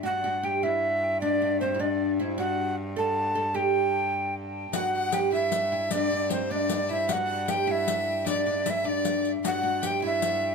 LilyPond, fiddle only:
\new Staff \with { instrumentName = "Fiddle" } { \time 6/8 \key e \minor \tempo 4. = 102 r2. | r2. | r2. | r2. |
fis''8 fis''4 e''4. | d''4 c''8 d''4 e''8 | fis''8 fis''8 g''8 e''4. | d''8 d''8 e''8 d''4 r8 |
fis''4 g''8 e''4. | }